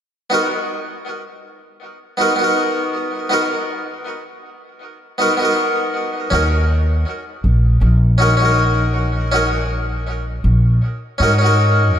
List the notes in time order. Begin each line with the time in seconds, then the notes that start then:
0.30 B3 D#4 F#4 A#4
2.17 B3 D#4 F#4 A#4
2.36 B3 D#4
2.42 F#4 A#4
3.29 B3 D#4 F#4 A#4
5.18 B3 D#4 F#4 A#4
5.37 B3 D#4
5.43 F#4 A#4
6.30 D#2 C#4 D#4 F#4
6.35 A#4
7.44 A#1
7.81 A#1
8.18 C#4 D#4 F#4 A#4
8.37 C#4 D#4
8.42 F#4 A#4
9.32 C#4 D#4 F#4
9.36 A#4
10.44 A#1
11.18 G#2 C#4 D#4 F#4
11.23 A#4
11.39 C#4 D#4
11.44 F#4 A#4
11.94 D#2